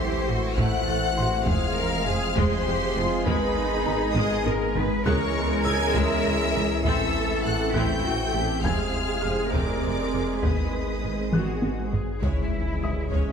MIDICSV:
0, 0, Header, 1, 13, 480
1, 0, Start_track
1, 0, Tempo, 597015
1, 1185, Time_signature, 6, 3, 24, 8
1, 10711, End_track
2, 0, Start_track
2, 0, Title_t, "Violin section"
2, 0, Program_c, 0, 48
2, 0, Note_on_c, 0, 84, 102
2, 446, Note_off_c, 0, 84, 0
2, 465, Note_on_c, 0, 90, 115
2, 1184, Note_on_c, 0, 89, 112
2, 1185, Note_off_c, 0, 90, 0
2, 1904, Note_on_c, 0, 84, 125
2, 1905, Note_off_c, 0, 89, 0
2, 2625, Note_off_c, 0, 84, 0
2, 2627, Note_on_c, 0, 83, 127
2, 3332, Note_off_c, 0, 83, 0
2, 3337, Note_on_c, 0, 87, 110
2, 3581, Note_off_c, 0, 87, 0
2, 4058, Note_on_c, 0, 85, 127
2, 4510, Note_off_c, 0, 85, 0
2, 4539, Note_on_c, 0, 92, 127
2, 4778, Note_on_c, 0, 88, 127
2, 4782, Note_off_c, 0, 92, 0
2, 5497, Note_off_c, 0, 88, 0
2, 5507, Note_on_c, 0, 88, 127
2, 5977, Note_off_c, 0, 88, 0
2, 5985, Note_on_c, 0, 90, 107
2, 6220, Note_off_c, 0, 90, 0
2, 6227, Note_on_c, 0, 91, 118
2, 6932, Note_off_c, 0, 91, 0
2, 6948, Note_on_c, 0, 89, 109
2, 7667, Note_off_c, 0, 89, 0
2, 7669, Note_on_c, 0, 86, 91
2, 8387, Note_off_c, 0, 86, 0
2, 8395, Note_on_c, 0, 87, 70
2, 9590, Note_off_c, 0, 87, 0
2, 9828, Note_on_c, 0, 76, 56
2, 10711, Note_off_c, 0, 76, 0
2, 10711, End_track
3, 0, Start_track
3, 0, Title_t, "Felt piano"
3, 0, Program_c, 1, 0
3, 0, Control_c, 1, 64, 127
3, 0, Note_on_c, 1, 68, 51
3, 0, Note_on_c, 1, 78, 54
3, 432, Note_off_c, 1, 68, 0
3, 944, Note_on_c, 1, 84, 76
3, 1152, Note_off_c, 1, 78, 0
3, 1201, Control_c, 1, 64, 0
3, 1348, Control_c, 1, 64, 127
3, 2353, Note_off_c, 1, 84, 0
3, 2639, Control_c, 1, 64, 0
3, 2784, Control_c, 1, 64, 127
3, 3105, Note_on_c, 1, 82, 63
3, 4068, Note_on_c, 1, 90, 86
3, 4079, Control_c, 1, 64, 0
3, 4194, Control_c, 1, 64, 127
3, 4513, Note_off_c, 1, 82, 0
3, 4540, Note_on_c, 1, 88, 67
3, 5474, Note_off_c, 1, 90, 0
3, 5519, Control_c, 1, 64, 0
3, 5661, Control_c, 1, 64, 127
3, 5950, Note_off_c, 1, 88, 0
3, 6223, Note_on_c, 1, 90, 56
3, 6949, Note_on_c, 1, 80, 51
3, 6953, Note_on_c, 1, 92, 62
3, 6962, Control_c, 1, 64, 0
3, 7095, Control_c, 1, 64, 127
3, 7411, Note_on_c, 1, 89, 63
3, 7632, Note_off_c, 1, 90, 0
3, 8355, Note_off_c, 1, 80, 0
3, 8357, Note_off_c, 1, 92, 0
3, 8402, Control_c, 1, 64, 0
3, 8530, Control_c, 1, 64, 127
3, 8826, Note_off_c, 1, 89, 0
3, 9111, Note_on_c, 1, 90, 51
3, 9796, Note_off_c, 1, 90, 0
3, 9839, Control_c, 1, 64, 0
3, 9969, Control_c, 1, 64, 127
3, 10318, Note_on_c, 1, 76, 40
3, 10320, Note_on_c, 1, 87, 47
3, 10711, Note_off_c, 1, 76, 0
3, 10711, Note_off_c, 1, 87, 0
3, 10711, End_track
4, 0, Start_track
4, 0, Title_t, "Violin section"
4, 0, Program_c, 2, 48
4, 0, Note_on_c, 2, 72, 101
4, 450, Note_off_c, 2, 72, 0
4, 466, Note_on_c, 2, 78, 105
4, 1171, Note_off_c, 2, 78, 0
4, 1184, Note_on_c, 2, 77, 97
4, 1905, Note_off_c, 2, 77, 0
4, 1911, Note_on_c, 2, 72, 101
4, 2628, Note_off_c, 2, 72, 0
4, 2629, Note_on_c, 2, 71, 97
4, 3347, Note_off_c, 2, 71, 0
4, 3349, Note_on_c, 2, 75, 102
4, 3583, Note_off_c, 2, 75, 0
4, 4067, Note_on_c, 2, 73, 105
4, 4514, Note_off_c, 2, 73, 0
4, 4541, Note_on_c, 2, 80, 115
4, 4778, Note_off_c, 2, 80, 0
4, 4779, Note_on_c, 2, 76, 117
4, 5492, Note_off_c, 2, 76, 0
4, 5502, Note_on_c, 2, 76, 103
4, 5974, Note_off_c, 2, 76, 0
4, 5986, Note_on_c, 2, 78, 98
4, 6225, Note_off_c, 2, 78, 0
4, 6234, Note_on_c, 2, 79, 105
4, 6935, Note_off_c, 2, 79, 0
4, 6944, Note_on_c, 2, 77, 81
4, 7665, Note_off_c, 2, 77, 0
4, 7671, Note_on_c, 2, 74, 77
4, 8387, Note_on_c, 2, 75, 57
4, 8388, Note_off_c, 2, 74, 0
4, 9586, Note_off_c, 2, 75, 0
4, 9830, Note_on_c, 2, 73, 60
4, 10051, Note_off_c, 2, 73, 0
4, 10308, Note_on_c, 2, 68, 44
4, 10373, Note_off_c, 2, 68, 0
4, 10541, Note_on_c, 2, 73, 58
4, 10711, Note_off_c, 2, 73, 0
4, 10711, End_track
5, 0, Start_track
5, 0, Title_t, "Cello section"
5, 0, Program_c, 3, 48
5, 0, Note_on_c, 3, 67, 85
5, 224, Note_off_c, 3, 67, 0
5, 228, Note_on_c, 3, 66, 80
5, 467, Note_off_c, 3, 66, 0
5, 468, Note_on_c, 3, 64, 73
5, 706, Note_off_c, 3, 64, 0
5, 706, Note_on_c, 3, 69, 77
5, 943, Note_on_c, 3, 66, 75
5, 946, Note_off_c, 3, 69, 0
5, 1179, Note_on_c, 3, 68, 83
5, 1180, Note_off_c, 3, 66, 0
5, 1422, Note_off_c, 3, 68, 0
5, 1425, Note_on_c, 3, 70, 96
5, 1665, Note_off_c, 3, 70, 0
5, 1665, Note_on_c, 3, 68, 89
5, 1894, Note_off_c, 3, 68, 0
5, 1904, Note_on_c, 3, 68, 83
5, 2140, Note_off_c, 3, 68, 0
5, 2147, Note_on_c, 3, 67, 85
5, 2386, Note_off_c, 3, 67, 0
5, 2391, Note_on_c, 3, 65, 85
5, 2627, Note_on_c, 3, 63, 99
5, 2628, Note_off_c, 3, 65, 0
5, 3346, Note_off_c, 3, 63, 0
5, 3347, Note_on_c, 3, 68, 96
5, 3585, Note_on_c, 3, 70, 96
5, 3586, Note_off_c, 3, 68, 0
5, 3825, Note_off_c, 3, 70, 0
5, 3827, Note_on_c, 3, 71, 95
5, 4066, Note_off_c, 3, 71, 0
5, 4071, Note_on_c, 3, 70, 121
5, 5479, Note_off_c, 3, 70, 0
5, 5506, Note_on_c, 3, 69, 109
5, 6211, Note_off_c, 3, 69, 0
5, 6222, Note_on_c, 3, 64, 88
5, 6464, Note_off_c, 3, 64, 0
5, 6465, Note_on_c, 3, 66, 80
5, 6705, Note_off_c, 3, 66, 0
5, 6707, Note_on_c, 3, 67, 69
5, 6945, Note_on_c, 3, 68, 89
5, 6946, Note_off_c, 3, 67, 0
5, 7651, Note_off_c, 3, 68, 0
5, 7667, Note_on_c, 3, 70, 76
5, 8385, Note_on_c, 3, 71, 58
5, 8386, Note_off_c, 3, 70, 0
5, 9043, Note_off_c, 3, 71, 0
5, 9104, Note_on_c, 3, 66, 64
5, 9105, Note_on_c, 3, 68, 53
5, 9328, Note_off_c, 3, 68, 0
5, 9338, Note_off_c, 3, 66, 0
5, 9348, Note_on_c, 3, 66, 54
5, 9586, Note_off_c, 3, 66, 0
5, 9586, Note_on_c, 3, 68, 51
5, 9826, Note_off_c, 3, 68, 0
5, 9831, Note_on_c, 3, 64, 76
5, 10534, Note_off_c, 3, 64, 0
5, 10548, Note_on_c, 3, 61, 67
5, 10711, Note_off_c, 3, 61, 0
5, 10711, End_track
6, 0, Start_track
6, 0, Title_t, "Synth drone"
6, 0, Program_c, 4, 95
6, 0, Note_on_c, 4, 52, 94
6, 0, Note_on_c, 4, 57, 87
6, 0, Note_on_c, 4, 64, 91
6, 0, Note_on_c, 4, 76, 95
6, 1151, Note_off_c, 4, 64, 0
6, 1151, Note_off_c, 4, 76, 0
6, 1185, Note_on_c, 4, 56, 86
6, 1187, Note_off_c, 4, 52, 0
6, 1188, Note_off_c, 4, 57, 0
6, 1189, Note_on_c, 4, 60, 92
6, 1189, Note_on_c, 4, 68, 87
6, 1189, Note_on_c, 4, 77, 91
6, 2627, Note_off_c, 4, 60, 0
6, 2627, Note_off_c, 4, 77, 0
6, 2627, Note_on_c, 4, 59, 90
6, 2630, Note_on_c, 4, 75, 94
6, 4066, Note_off_c, 4, 59, 0
6, 4068, Note_off_c, 4, 75, 0
6, 4072, Note_on_c, 4, 76, 87
6, 4073, Note_on_c, 4, 61, 90
6, 5502, Note_on_c, 4, 60, 97
6, 5502, Note_on_c, 4, 64, 86
6, 5505, Note_off_c, 4, 56, 0
6, 5507, Note_off_c, 4, 68, 0
6, 5509, Note_off_c, 4, 61, 0
6, 5511, Note_on_c, 4, 57, 84
6, 6944, Note_off_c, 4, 64, 0
6, 6946, Note_on_c, 4, 68, 81
6, 6947, Note_on_c, 4, 56, 83
6, 6948, Note_off_c, 4, 57, 0
6, 6949, Note_off_c, 4, 76, 0
6, 6949, Note_on_c, 4, 72, 88
6, 8384, Note_off_c, 4, 60, 0
6, 8387, Note_off_c, 4, 72, 0
6, 8387, Note_on_c, 4, 63, 76
6, 8387, Note_on_c, 4, 71, 76
6, 9820, Note_off_c, 4, 56, 0
6, 9822, Note_off_c, 4, 68, 0
6, 9825, Note_on_c, 4, 73, 74
6, 9826, Note_off_c, 4, 63, 0
6, 9826, Note_off_c, 4, 71, 0
6, 9829, Note_on_c, 4, 64, 69
6, 9830, Note_on_c, 4, 56, 73
6, 9832, Note_on_c, 4, 68, 71
6, 10711, Note_off_c, 4, 56, 0
6, 10711, Note_off_c, 4, 64, 0
6, 10711, Note_off_c, 4, 68, 0
6, 10711, Note_off_c, 4, 73, 0
6, 10711, End_track
7, 0, Start_track
7, 0, Title_t, "French horn section"
7, 0, Program_c, 5, 60
7, 0, Note_on_c, 5, 60, 90
7, 0, Note_on_c, 5, 72, 78
7, 2596, Note_off_c, 5, 60, 0
7, 2596, Note_off_c, 5, 72, 0
7, 2626, Note_on_c, 5, 59, 105
7, 2628, Note_on_c, 5, 68, 101
7, 3935, Note_off_c, 5, 59, 0
7, 3935, Note_off_c, 5, 68, 0
7, 4071, Note_on_c, 5, 64, 100
7, 4075, Note_on_c, 5, 61, 101
7, 5478, Note_off_c, 5, 61, 0
7, 5513, Note_on_c, 5, 60, 93
7, 6916, Note_off_c, 5, 64, 0
7, 6953, Note_on_c, 5, 68, 78
7, 8386, Note_on_c, 5, 59, 55
7, 8389, Note_off_c, 5, 60, 0
7, 9557, Note_off_c, 5, 68, 0
7, 9562, Note_off_c, 5, 59, 0
7, 9830, Note_on_c, 5, 61, 57
7, 9833, Note_on_c, 5, 68, 57
7, 10711, Note_off_c, 5, 61, 0
7, 10711, Note_off_c, 5, 68, 0
7, 10711, End_track
8, 0, Start_track
8, 0, Title_t, "Viola section"
8, 0, Program_c, 6, 48
8, 0, Note_on_c, 6, 64, 74
8, 222, Note_on_c, 6, 52, 57
8, 286, Note_off_c, 6, 52, 0
8, 466, Note_on_c, 6, 57, 98
8, 689, Note_off_c, 6, 57, 0
8, 706, Note_on_c, 6, 57, 64
8, 770, Note_off_c, 6, 57, 0
8, 943, Note_on_c, 6, 52, 73
8, 1008, Note_off_c, 6, 52, 0
8, 1152, Note_off_c, 6, 64, 0
8, 1190, Note_on_c, 6, 56, 76
8, 1191, Note_on_c, 6, 68, 90
8, 1411, Note_off_c, 6, 56, 0
8, 1669, Note_on_c, 6, 53, 74
8, 1733, Note_off_c, 6, 53, 0
8, 1898, Note_on_c, 6, 56, 101
8, 2125, Note_off_c, 6, 56, 0
8, 2140, Note_on_c, 6, 56, 76
8, 2205, Note_off_c, 6, 56, 0
8, 2379, Note_on_c, 6, 53, 78
8, 2443, Note_off_c, 6, 53, 0
8, 2624, Note_on_c, 6, 56, 104
8, 2848, Note_off_c, 6, 56, 0
8, 3108, Note_on_c, 6, 51, 77
8, 3172, Note_off_c, 6, 51, 0
8, 3348, Note_on_c, 6, 56, 113
8, 3570, Note_off_c, 6, 56, 0
8, 3591, Note_on_c, 6, 56, 78
8, 3656, Note_off_c, 6, 56, 0
8, 3831, Note_on_c, 6, 51, 89
8, 3896, Note_off_c, 6, 51, 0
8, 4036, Note_off_c, 6, 68, 0
8, 4066, Note_on_c, 6, 68, 104
8, 4069, Note_on_c, 6, 56, 98
8, 4291, Note_off_c, 6, 56, 0
8, 4550, Note_on_c, 6, 52, 86
8, 4615, Note_off_c, 6, 52, 0
8, 4795, Note_on_c, 6, 56, 105
8, 5014, Note_off_c, 6, 56, 0
8, 5039, Note_on_c, 6, 56, 72
8, 5103, Note_off_c, 6, 56, 0
8, 5280, Note_on_c, 6, 52, 75
8, 5345, Note_off_c, 6, 52, 0
8, 5477, Note_off_c, 6, 68, 0
8, 5521, Note_on_c, 6, 69, 94
8, 5522, Note_on_c, 6, 60, 102
8, 5737, Note_off_c, 6, 60, 0
8, 5999, Note_on_c, 6, 57, 80
8, 6063, Note_off_c, 6, 57, 0
8, 6240, Note_on_c, 6, 60, 93
8, 6455, Note_off_c, 6, 60, 0
8, 6464, Note_on_c, 6, 60, 78
8, 6528, Note_off_c, 6, 60, 0
8, 6706, Note_on_c, 6, 57, 77
8, 6770, Note_off_c, 6, 57, 0
8, 6925, Note_off_c, 6, 69, 0
8, 6948, Note_on_c, 6, 60, 76
8, 6950, Note_on_c, 6, 68, 78
8, 7170, Note_off_c, 6, 60, 0
8, 7434, Note_on_c, 6, 56, 56
8, 7498, Note_off_c, 6, 56, 0
8, 7667, Note_on_c, 6, 60, 76
8, 7890, Note_off_c, 6, 60, 0
8, 7908, Note_on_c, 6, 60, 51
8, 7972, Note_off_c, 6, 60, 0
8, 8147, Note_on_c, 6, 56, 49
8, 8212, Note_off_c, 6, 56, 0
8, 8390, Note_on_c, 6, 59, 58
8, 8611, Note_off_c, 6, 59, 0
8, 8866, Note_on_c, 6, 56, 44
8, 8931, Note_off_c, 6, 56, 0
8, 9101, Note_on_c, 6, 59, 57
8, 9326, Note_off_c, 6, 59, 0
8, 9336, Note_on_c, 6, 59, 48
8, 9401, Note_off_c, 6, 59, 0
8, 9582, Note_on_c, 6, 56, 46
8, 9646, Note_off_c, 6, 56, 0
8, 9667, Note_off_c, 6, 68, 0
8, 9816, Note_on_c, 6, 56, 61
8, 10043, Note_off_c, 6, 56, 0
8, 10304, Note_on_c, 6, 56, 44
8, 10369, Note_off_c, 6, 56, 0
8, 10538, Note_on_c, 6, 56, 57
8, 10711, Note_off_c, 6, 56, 0
8, 10711, End_track
9, 0, Start_track
9, 0, Title_t, "Trombone section"
9, 0, Program_c, 7, 61
9, 0, Note_on_c, 7, 52, 73
9, 0, Note_on_c, 7, 57, 77
9, 1153, Note_off_c, 7, 52, 0
9, 1156, Note_off_c, 7, 57, 0
9, 1193, Note_on_c, 7, 53, 86
9, 1194, Note_on_c, 7, 56, 84
9, 2600, Note_off_c, 7, 53, 0
9, 2627, Note_on_c, 7, 51, 88
9, 3930, Note_off_c, 7, 51, 0
9, 3930, Note_off_c, 7, 56, 0
9, 4067, Note_on_c, 7, 52, 89
9, 4069, Note_on_c, 7, 56, 92
9, 5475, Note_off_c, 7, 56, 0
9, 5509, Note_on_c, 7, 57, 89
9, 6914, Note_off_c, 7, 52, 0
9, 6919, Note_off_c, 7, 57, 0
9, 6941, Note_on_c, 7, 48, 75
9, 6941, Note_on_c, 7, 56, 79
9, 8383, Note_off_c, 7, 48, 0
9, 8387, Note_on_c, 7, 51, 49
9, 9551, Note_off_c, 7, 56, 0
9, 9562, Note_off_c, 7, 51, 0
9, 9821, Note_on_c, 7, 52, 54
9, 9825, Note_on_c, 7, 56, 54
9, 10711, Note_off_c, 7, 52, 0
9, 10711, Note_off_c, 7, 56, 0
9, 10711, End_track
10, 0, Start_track
10, 0, Title_t, "Sub bass"
10, 0, Program_c, 8, 38
10, 0, Note_on_c, 8, 33, 84
10, 1191, Note_on_c, 8, 29, 83
10, 1203, Note_off_c, 8, 33, 0
10, 2627, Note_on_c, 8, 32, 86
10, 2639, Note_off_c, 8, 29, 0
10, 4068, Note_on_c, 8, 37, 79
10, 4080, Note_off_c, 8, 32, 0
10, 5502, Note_on_c, 8, 33, 76
10, 5514, Note_off_c, 8, 37, 0
10, 6949, Note_on_c, 8, 29, 82
10, 6961, Note_off_c, 8, 33, 0
10, 8386, Note_on_c, 8, 32, 76
10, 8399, Note_off_c, 8, 29, 0
10, 9823, Note_off_c, 8, 32, 0
10, 9828, Note_on_c, 8, 37, 66
10, 10711, Note_off_c, 8, 37, 0
10, 10711, End_track
11, 0, Start_track
11, 0, Title_t, "Double bass section"
11, 0, Program_c, 10, 48
11, 230, Note_on_c, 10, 33, 60
11, 294, Note_off_c, 10, 33, 0
11, 463, Note_on_c, 10, 33, 97
11, 528, Note_off_c, 10, 33, 0
11, 707, Note_on_c, 10, 33, 69
11, 772, Note_off_c, 10, 33, 0
11, 943, Note_on_c, 10, 33, 65
11, 1007, Note_off_c, 10, 33, 0
11, 1181, Note_on_c, 10, 29, 94
11, 1245, Note_off_c, 10, 29, 0
11, 1663, Note_on_c, 10, 29, 68
11, 1727, Note_off_c, 10, 29, 0
11, 1902, Note_on_c, 10, 29, 103
11, 1967, Note_off_c, 10, 29, 0
11, 2146, Note_on_c, 10, 29, 72
11, 2210, Note_off_c, 10, 29, 0
11, 2383, Note_on_c, 10, 29, 76
11, 2447, Note_off_c, 10, 29, 0
11, 2624, Note_on_c, 10, 32, 96
11, 2688, Note_off_c, 10, 32, 0
11, 3105, Note_on_c, 10, 32, 78
11, 3169, Note_off_c, 10, 32, 0
11, 3343, Note_on_c, 10, 32, 113
11, 3407, Note_off_c, 10, 32, 0
11, 3588, Note_on_c, 10, 32, 81
11, 3652, Note_off_c, 10, 32, 0
11, 3830, Note_on_c, 10, 32, 78
11, 3894, Note_off_c, 10, 32, 0
11, 4070, Note_on_c, 10, 37, 105
11, 4134, Note_off_c, 10, 37, 0
11, 4544, Note_on_c, 10, 37, 68
11, 4608, Note_off_c, 10, 37, 0
11, 4787, Note_on_c, 10, 37, 102
11, 4851, Note_off_c, 10, 37, 0
11, 5025, Note_on_c, 10, 37, 72
11, 5089, Note_off_c, 10, 37, 0
11, 5267, Note_on_c, 10, 37, 75
11, 5331, Note_off_c, 10, 37, 0
11, 5505, Note_on_c, 10, 33, 92
11, 5569, Note_off_c, 10, 33, 0
11, 5989, Note_on_c, 10, 33, 59
11, 6053, Note_off_c, 10, 33, 0
11, 6230, Note_on_c, 10, 33, 92
11, 6295, Note_off_c, 10, 33, 0
11, 6470, Note_on_c, 10, 33, 68
11, 6535, Note_off_c, 10, 33, 0
11, 6704, Note_on_c, 10, 33, 70
11, 6769, Note_off_c, 10, 33, 0
11, 6947, Note_on_c, 10, 29, 80
11, 7012, Note_off_c, 10, 29, 0
11, 7436, Note_on_c, 10, 29, 52
11, 7500, Note_off_c, 10, 29, 0
11, 7675, Note_on_c, 10, 29, 73
11, 7739, Note_off_c, 10, 29, 0
11, 7912, Note_on_c, 10, 29, 46
11, 7977, Note_off_c, 10, 29, 0
11, 8152, Note_on_c, 10, 29, 50
11, 8216, Note_off_c, 10, 29, 0
11, 8389, Note_on_c, 10, 32, 61
11, 8454, Note_off_c, 10, 32, 0
11, 8862, Note_on_c, 10, 32, 40
11, 8927, Note_off_c, 10, 32, 0
11, 9101, Note_on_c, 10, 32, 60
11, 9165, Note_off_c, 10, 32, 0
11, 9342, Note_on_c, 10, 32, 40
11, 9407, Note_off_c, 10, 32, 0
11, 9581, Note_on_c, 10, 32, 41
11, 9645, Note_off_c, 10, 32, 0
11, 9822, Note_on_c, 10, 37, 54
11, 9886, Note_off_c, 10, 37, 0
11, 10310, Note_on_c, 10, 37, 41
11, 10374, Note_off_c, 10, 37, 0
11, 10548, Note_on_c, 10, 37, 60
11, 10612, Note_off_c, 10, 37, 0
11, 10711, End_track
12, 0, Start_track
12, 0, Title_t, "Impact"
12, 0, Program_c, 11, 103
12, 9830, Note_on_c, 11, 60, 59
12, 10711, Note_off_c, 11, 60, 0
12, 10711, End_track
13, 0, Start_track
13, 0, Title_t, "Taiko and cinematic ensemble drums"
13, 465, Note_on_c, 9, 41, 81
13, 546, Note_off_c, 9, 41, 0
13, 1183, Note_on_c, 9, 41, 105
13, 1264, Note_off_c, 9, 41, 0
13, 1906, Note_on_c, 9, 41, 94
13, 1987, Note_off_c, 9, 41, 0
13, 2624, Note_on_c, 9, 41, 105
13, 2704, Note_off_c, 9, 41, 0
13, 3346, Note_on_c, 9, 48, 81
13, 3427, Note_off_c, 9, 48, 0
13, 3588, Note_on_c, 9, 48, 90
13, 3668, Note_off_c, 9, 48, 0
13, 3828, Note_on_c, 9, 43, 99
13, 3909, Note_off_c, 9, 43, 0
13, 4070, Note_on_c, 9, 41, 99
13, 4150, Note_off_c, 9, 41, 0
13, 4785, Note_on_c, 9, 41, 94
13, 4866, Note_off_c, 9, 41, 0
13, 5505, Note_on_c, 9, 41, 101
13, 5585, Note_off_c, 9, 41, 0
13, 6225, Note_on_c, 9, 41, 81
13, 6305, Note_off_c, 9, 41, 0
13, 6946, Note_on_c, 9, 41, 93
13, 7026, Note_off_c, 9, 41, 0
13, 7667, Note_on_c, 9, 41, 82
13, 7747, Note_off_c, 9, 41, 0
13, 8385, Note_on_c, 9, 41, 96
13, 8465, Note_off_c, 9, 41, 0
13, 9106, Note_on_c, 9, 47, 79
13, 9186, Note_off_c, 9, 47, 0
13, 9343, Note_on_c, 9, 48, 82
13, 9424, Note_off_c, 9, 48, 0
13, 9588, Note_on_c, 9, 43, 87
13, 9669, Note_off_c, 9, 43, 0
13, 9829, Note_on_c, 9, 41, 85
13, 9909, Note_off_c, 9, 41, 0
13, 10544, Note_on_c, 9, 41, 73
13, 10625, Note_off_c, 9, 41, 0
13, 10711, End_track
0, 0, End_of_file